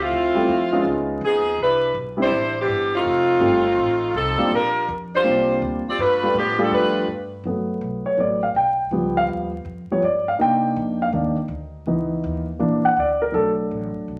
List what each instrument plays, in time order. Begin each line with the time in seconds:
0.01 saxophone section A3 C4 E4 F4
0.10 upright bass D2
0.35 grand piano G3 A3 C4 E4 F4
0.48 upright bass F2
0.72 grand piano G#3 B3 C#4 D#4 F4
0.84 upright bass C#2
1.21 upright bass D#2, saxophone section F3 B3 D#4 G#4
1.58 upright bass C2, saxophone section E4 B4
1.62 saxophone section G3 D4
1.94 upright bass B1
2.17 grand piano G3 B3 C4 D4 E4
2.22 saxophone section G3 D4 E4 C5
2.32 upright bass A1
2.60 saxophone section E3 B3 D4 G4
2.68 upright bass G1
2.95 saxophone section A3 C4 D#4 F4
3.05 upright bass F1
3.40 upright bass G1, grand piano G3 A3 C4 D#4 F4
3.78 upright bass A1
4.14 upright bass C2, saxophone section F3 C4 D#4 A4
4.38 grand piano G3 A#3 C4 D4 F4, muted upright bass stroke
4.51 upright bass A#1, saxophone section G3 D4 F4 A#4
4.88 upright bass F2
5.15 saxophone section G3 D4 F4 C5
5.24 upright bass C2, grand piano G3 A#3 C4 D4 F4
5.62 upright bass D2
5.86 saxophone section C4 F4 G4 D5, muted upright bass stroke
5.98 upright bass G2, saxophone section A3 D4 F4 B4
6.22 grand piano G3 A3 B3 D4 F4
6.34 upright bass A2
6.38 saxophone section F3 B3 D4 G4
6.58 grand piano G3 A3 B3 D4 F4, saxophone section B3
6.63 saxophone section F3 D4 A4
6.71 upright bass F2, saxophone section D4
6.75 saxophone section A3 F4 B4
7.07 upright bass G2
7.44 upright bass G1, grand piano F#3 A3 B3
7.81 upright bass B1
8.04 grand piano C#5, muted upright bass stroke
8.17 upright bass A1, grand piano F#3 A3 B3 D5
8.43 grand piano F5
8.55 upright bass B1, grand piano G5
8.91 upright bass C#2, grand piano F3 G3 B3
9.17 grand piano F5
9.28 upright bass D#2
9.65 upright bass F2
9.90 grand piano F3 G3 B3 C#5, muted upright bass stroke
10.02 upright bass G2, grand piano D5
10.28 grand piano F5
10.39 upright bass C3, grand piano A#3 D4 D#4 G5
10.76 upright bass F2
11.02 grand piano F5
11.12 upright bass D#2, grand piano D#3 A#3 D4
11.48 upright bass D2
11.86 upright bass C#2, grand piano E3 B3 D#4
12.24 upright bass D#2
12.59 upright bass A#1, grand piano E3 A#3 D4
12.85 grand piano F#5
12.96 upright bass D2, grand piano D5
13.22 grand piano A#4
13.32 upright bass B1, grand piano F#3 A3 D4 A4
13.71 upright bass A1
13.96 muted upright bass stroke
14.08 upright bass B1